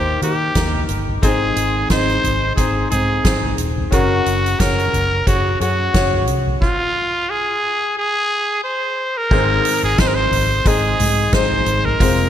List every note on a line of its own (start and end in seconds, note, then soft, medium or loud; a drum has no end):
0.00 0.16 D#2 medium
0.00 1.25 A#2 medium
0.00 0.21 A#3 medium
0.00 0.22 D#4 medium
0.00 0.22 G4 medium
0.00 0.23 G4 medium
0.00 0.23 A#4 medium
0.00 0.15 C5 medium
0.21 0.49 D#3 medium
0.21 0.48 A#3 medium
0.21 0.48 D#4 medium
0.21 0.49 G4 medium
0.21 0.86 G4 medium
0.21 0.49 A#4 medium
0.21 closed hi-hat medium
0.55 0.83 D#2 medium
0.55 1.08 A#3 medium
0.55 1.09 D#4 medium
0.55 1.09 G4 medium
0.55 1.09 A#4 medium
0.55 kick medium
0.55 snare medium
0.55 closed hi-hat medium
0.75 floor tom medium
0.89 1.17 G1 medium
0.89 closed hi-hat medium
1.08 floor tom medium
1.22 1.51 G#1 medium
1.22 2.20 G#2 medium
1.22 2.20 D#3 medium
1.22 1.76 C4 medium
1.22 1.76 D#4 medium
1.22 1.76 G#4 medium
1.22 1.87 G#4 medium
1.22 1.77 C5 loud
1.22 kick loud
1.22 closed hi-hat medium
1.56 1.84 G#1 medium
1.56 closed hi-hat medium
1.90 2.18 G#1 medium
1.90 2.43 C4 medium
1.90 2.44 D#4 medium
1.90 2.44 G#4 medium
1.90 2.54 C5 medium
1.90 2.44 D#5 medium
1.90 kick medium
1.90 snare medium
1.90 closed hi-hat medium
2.09 closed hi-hat soft
2.24 2.51 G#1 medium
2.24 closed hi-hat medium
2.24 floor tom soft
2.56 2.85 G#1 medium
2.56 2.84 C4 medium
2.56 2.84 D#4 medium
2.56 2.88 G#4 medium
2.56 2.85 G#4 medium
2.56 2.85 C5 medium
2.56 kick medium
2.56 closed hi-hat medium
2.90 3.19 G#2 medium
2.90 3.17 C4 medium
2.90 3.18 D#4 medium
2.90 3.54 G#4 medium
2.90 3.18 G#4 medium
2.90 3.18 C5 medium
2.90 closed hi-hat medium
2.90 floor tom medium
3.23 3.53 G#1 medium
3.23 3.77 C4 medium
3.23 3.78 D#4 medium
3.23 3.78 G#4 medium
3.23 3.78 C5 medium
3.23 kick loud
3.23 snare medium
3.23 closed hi-hat medium
3.43 floor tom medium
3.58 3.86 D#1 medium
3.58 closed hi-hat medium
3.78 floor tom soft
3.91 4.20 F#1 loud
3.91 4.89 C#3 medium
3.91 4.45 C#4 medium
3.91 4.45 F#4 medium
3.91 4.62 F#4 medium
3.91 4.45 G#4 medium
3.91 4.46 A#4 medium
3.91 kick loud
3.91 closed hi-hat medium
4.26 4.54 F#1 loud
4.26 closed hi-hat medium
4.46 closed hi-hat soft
4.59 4.87 F#1 medium
4.59 5.12 C#4 medium
4.59 5.13 F#4 medium
4.59 5.13 G#4 medium
4.59 5.27 A#4 medium
4.59 5.13 C#5 medium
4.59 kick medium
4.59 snare medium
4.59 closed hi-hat medium
4.79 closed hi-hat soft
4.93 5.21 F#1 medium
4.93 closed hi-hat medium
4.93 floor tom medium
5.26 5.55 F#1 medium
5.26 5.53 C#4 medium
5.26 5.54 F#4 medium
5.26 5.59 F#4 medium
5.26 5.54 G#4 medium
5.26 5.54 C#5 medium
5.26 kick loud
5.26 closed hi-hat medium
5.60 5.88 F#2 medium
5.60 5.87 C#4 medium
5.60 5.87 F#4 medium
5.60 6.25 F#4 medium
5.60 5.87 G#4 medium
5.60 5.88 C#5 medium
5.60 closed hi-hat medium
5.94 6.27 F#1 medium
5.94 6.47 C#4 medium
5.94 6.48 F#4 medium
5.94 6.48 G#4 medium
5.94 6.48 C#5 medium
5.94 kick loud
5.94 snare loud
5.94 closed hi-hat medium
6.13 floor tom medium
6.27 6.55 C2 medium
6.27 closed hi-hat medium
6.47 floor tom medium
6.62 7.32 F4 medium
6.62 kick loud
6.62 crash medium
7.30 7.97 G#4 loud
7.98 8.60 G#4 medium
8.64 9.19 C5 medium
9.17 9.83 A#4 medium
9.31 9.59 G#1 loud
9.31 10.28 G#2 medium
9.31 10.28 D#3 medium
9.31 9.84 G#3 medium
9.31 9.84 C4 medium
9.31 9.85 D#4 medium
9.31 9.85 G#4 medium
9.31 9.85 C5 medium
9.31 kick loud
9.31 crash loud
9.65 hi-hat pedal medium
9.65 open hi-hat medium
9.83 9.95 G#1 medium
9.83 10.01 G#4 medium
9.98 10.51 G#3 medium
9.98 10.51 C4 medium
9.98 10.52 D#4 medium
9.98 10.52 G#4 medium
9.98 10.09 C5 medium
9.98 10.52 C5 medium
9.98 kick loud
9.98 snare loud
9.98 hi-hat pedal medium
9.98 open hi-hat medium
10.08 10.16 A#4 medium
10.15 10.69 C5 medium
10.31 10.59 G#1 loud
10.31 floor tom medium
10.31 hi-hat pedal medium
10.31 open hi-hat medium
10.65 10.93 G#1 medium
10.65 11.18 G#3 medium
10.65 11.19 C4 medium
10.65 11.19 D#4 medium
10.65 11.19 G#4 medium
10.65 11.36 G#4 medium
10.65 11.19 D#5 medium
10.65 kick loud
10.65 hi-hat pedal medium
10.65 open hi-hat medium
10.99 11.27 G#2 medium
10.99 floor tom medium
10.99 hi-hat pedal medium
10.99 open hi-hat medium
11.32 11.61 G#1 loud
11.32 11.86 G#3 medium
11.32 11.86 C4 medium
11.32 11.86 D#4 medium
11.32 11.87 G#4 medium
11.32 11.87 C5 medium
11.32 kick loud
11.32 snare loud
11.32 hi-hat pedal medium
11.32 open hi-hat medium
11.51 floor tom medium
11.66 11.94 G#1 medium
11.66 hi-hat pedal medium
11.66 open hi-hat medium
11.85 12.29 A#4 medium
11.85 floor tom medium
12.00 12.28 F1 loud
12.00 12.29 C3 medium
12.00 12.29 G#3 medium
12.00 12.29 C4 medium
12.00 12.29 F4 medium
12.00 12.29 G#4 medium
12.00 12.29 C5 medium
12.00 kick loud
12.00 hi-hat pedal medium
12.00 open hi-hat loud